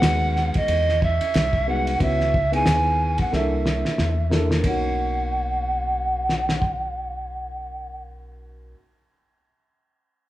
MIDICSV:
0, 0, Header, 1, 6, 480
1, 0, Start_track
1, 0, Key_signature, 5, "major"
1, 0, Tempo, 659341
1, 1457, Time_signature, 4, 2, 24, 8
1, 7492, End_track
2, 0, Start_track
2, 0, Title_t, "Pan flute"
2, 0, Program_c, 0, 75
2, 0, Note_on_c, 0, 78, 89
2, 414, Note_on_c, 0, 75, 84
2, 425, Note_off_c, 0, 78, 0
2, 751, Note_on_c, 0, 76, 100
2, 762, Note_off_c, 0, 75, 0
2, 1233, Note_on_c, 0, 78, 88
2, 1243, Note_off_c, 0, 76, 0
2, 1465, Note_off_c, 0, 78, 0
2, 1472, Note_on_c, 0, 76, 99
2, 1854, Note_on_c, 0, 80, 103
2, 1865, Note_off_c, 0, 76, 0
2, 2336, Note_on_c, 0, 78, 85
2, 2347, Note_off_c, 0, 80, 0
2, 2441, Note_on_c, 0, 76, 76
2, 2452, Note_off_c, 0, 78, 0
2, 3149, Note_off_c, 0, 76, 0
2, 3397, Note_on_c, 0, 78, 85
2, 5861, Note_off_c, 0, 78, 0
2, 7492, End_track
3, 0, Start_track
3, 0, Title_t, "Upright piano"
3, 0, Program_c, 1, 0
3, 0, Note_on_c, 1, 56, 66
3, 0, Note_on_c, 1, 59, 61
3, 0, Note_on_c, 1, 63, 63
3, 0, Note_on_c, 1, 66, 73
3, 551, Note_off_c, 1, 56, 0
3, 554, Note_off_c, 1, 59, 0
3, 557, Note_off_c, 1, 63, 0
3, 560, Note_off_c, 1, 66, 0
3, 1214, Note_on_c, 1, 56, 64
3, 1218, Note_on_c, 1, 59, 58
3, 1224, Note_on_c, 1, 63, 57
3, 1231, Note_on_c, 1, 66, 66
3, 1391, Note_off_c, 1, 56, 0
3, 1394, Note_off_c, 1, 59, 0
3, 1396, Note_off_c, 1, 63, 0
3, 1400, Note_off_c, 1, 66, 0
3, 1449, Note_on_c, 1, 59, 67
3, 1455, Note_on_c, 1, 61, 63
3, 1462, Note_on_c, 1, 64, 58
3, 1467, Note_on_c, 1, 66, 71
3, 1696, Note_off_c, 1, 59, 0
3, 1700, Note_off_c, 1, 61, 0
3, 1703, Note_off_c, 1, 64, 0
3, 1706, Note_off_c, 1, 66, 0
3, 1831, Note_on_c, 1, 59, 67
3, 1837, Note_on_c, 1, 63, 60
3, 1844, Note_on_c, 1, 64, 61
3, 1850, Note_on_c, 1, 68, 72
3, 2412, Note_on_c, 1, 58, 69
3, 2414, Note_off_c, 1, 59, 0
3, 2414, Note_off_c, 1, 64, 0
3, 2417, Note_off_c, 1, 63, 0
3, 2419, Note_on_c, 1, 62, 62
3, 2423, Note_off_c, 1, 68, 0
3, 2424, Note_on_c, 1, 64, 66
3, 2431, Note_on_c, 1, 69, 76
3, 3008, Note_off_c, 1, 58, 0
3, 3011, Note_off_c, 1, 62, 0
3, 3014, Note_off_c, 1, 64, 0
3, 3017, Note_off_c, 1, 69, 0
3, 3131, Note_on_c, 1, 58, 75
3, 3137, Note_on_c, 1, 62, 64
3, 3144, Note_on_c, 1, 64, 64
3, 3151, Note_on_c, 1, 69, 79
3, 3310, Note_off_c, 1, 58, 0
3, 3313, Note_off_c, 1, 62, 0
3, 3316, Note_off_c, 1, 64, 0
3, 3320, Note_off_c, 1, 69, 0
3, 3345, Note_on_c, 1, 58, 71
3, 3371, Note_on_c, 1, 61, 65
3, 3397, Note_on_c, 1, 63, 65
3, 3421, Note_on_c, 1, 66, 76
3, 6344, Note_off_c, 1, 58, 0
3, 6357, Note_off_c, 1, 61, 0
3, 6370, Note_off_c, 1, 63, 0
3, 6382, Note_off_c, 1, 66, 0
3, 7492, End_track
4, 0, Start_track
4, 0, Title_t, "Fingered electric bass"
4, 0, Program_c, 2, 33
4, 22, Note_on_c, 2, 39, 86
4, 382, Note_off_c, 2, 39, 0
4, 499, Note_on_c, 2, 40, 95
4, 860, Note_off_c, 2, 40, 0
4, 984, Note_on_c, 2, 36, 76
4, 1437, Note_off_c, 2, 36, 0
4, 1461, Note_on_c, 2, 37, 88
4, 1915, Note_off_c, 2, 37, 0
4, 1942, Note_on_c, 2, 39, 78
4, 2302, Note_off_c, 2, 39, 0
4, 2426, Note_on_c, 2, 36, 95
4, 2784, Note_off_c, 2, 36, 0
4, 2907, Note_on_c, 2, 40, 78
4, 3359, Note_off_c, 2, 40, 0
4, 3380, Note_on_c, 2, 35, 85
4, 6362, Note_off_c, 2, 35, 0
4, 7492, End_track
5, 0, Start_track
5, 0, Title_t, "Muted fingered electric bass strokes"
5, 883, Note_on_c, 9, 29, 45
5, 956, Note_off_c, 9, 29, 0
5, 2806, Note_on_c, 9, 29, 40
5, 2879, Note_off_c, 9, 29, 0
5, 7492, End_track
6, 0, Start_track
6, 0, Title_t, "Drums"
6, 15, Note_on_c, 9, 38, 95
6, 21, Note_on_c, 9, 44, 45
6, 21, Note_on_c, 9, 51, 67
6, 88, Note_off_c, 9, 38, 0
6, 94, Note_off_c, 9, 44, 0
6, 94, Note_off_c, 9, 51, 0
6, 263, Note_on_c, 9, 38, 29
6, 336, Note_off_c, 9, 38, 0
6, 393, Note_on_c, 9, 51, 51
6, 404, Note_on_c, 9, 36, 83
6, 466, Note_off_c, 9, 51, 0
6, 476, Note_off_c, 9, 36, 0
6, 496, Note_on_c, 9, 51, 65
6, 569, Note_off_c, 9, 51, 0
6, 648, Note_on_c, 9, 38, 28
6, 720, Note_off_c, 9, 38, 0
6, 744, Note_on_c, 9, 36, 85
6, 817, Note_off_c, 9, 36, 0
6, 879, Note_on_c, 9, 51, 58
6, 952, Note_off_c, 9, 51, 0
6, 976, Note_on_c, 9, 44, 47
6, 976, Note_on_c, 9, 51, 59
6, 986, Note_on_c, 9, 38, 89
6, 1049, Note_off_c, 9, 44, 0
6, 1049, Note_off_c, 9, 51, 0
6, 1059, Note_off_c, 9, 38, 0
6, 1114, Note_on_c, 9, 36, 78
6, 1187, Note_off_c, 9, 36, 0
6, 1362, Note_on_c, 9, 51, 53
6, 1435, Note_off_c, 9, 51, 0
6, 1459, Note_on_c, 9, 36, 86
6, 1459, Note_on_c, 9, 51, 55
6, 1531, Note_off_c, 9, 36, 0
6, 1532, Note_off_c, 9, 51, 0
6, 1606, Note_on_c, 9, 38, 30
6, 1679, Note_off_c, 9, 38, 0
6, 1705, Note_on_c, 9, 36, 80
6, 1778, Note_off_c, 9, 36, 0
6, 1844, Note_on_c, 9, 51, 46
6, 1916, Note_off_c, 9, 51, 0
6, 1934, Note_on_c, 9, 38, 95
6, 1940, Note_on_c, 9, 44, 43
6, 1940, Note_on_c, 9, 51, 61
6, 2007, Note_off_c, 9, 38, 0
6, 2013, Note_off_c, 9, 44, 0
6, 2013, Note_off_c, 9, 51, 0
6, 2314, Note_on_c, 9, 51, 51
6, 2324, Note_on_c, 9, 36, 84
6, 2387, Note_off_c, 9, 51, 0
6, 2397, Note_off_c, 9, 36, 0
6, 2423, Note_on_c, 9, 38, 42
6, 2496, Note_off_c, 9, 38, 0
6, 2662, Note_on_c, 9, 38, 58
6, 2735, Note_off_c, 9, 38, 0
6, 2805, Note_on_c, 9, 38, 52
6, 2877, Note_off_c, 9, 38, 0
6, 2900, Note_on_c, 9, 38, 68
6, 2973, Note_off_c, 9, 38, 0
6, 3141, Note_on_c, 9, 38, 70
6, 3214, Note_off_c, 9, 38, 0
6, 3282, Note_on_c, 9, 38, 69
6, 3355, Note_off_c, 9, 38, 0
6, 3376, Note_on_c, 9, 51, 68
6, 3378, Note_on_c, 9, 36, 85
6, 3449, Note_off_c, 9, 51, 0
6, 3450, Note_off_c, 9, 36, 0
6, 4581, Note_on_c, 9, 38, 49
6, 4654, Note_off_c, 9, 38, 0
6, 4724, Note_on_c, 9, 38, 60
6, 4797, Note_off_c, 9, 38, 0
6, 4817, Note_on_c, 9, 36, 74
6, 4890, Note_off_c, 9, 36, 0
6, 7492, End_track
0, 0, End_of_file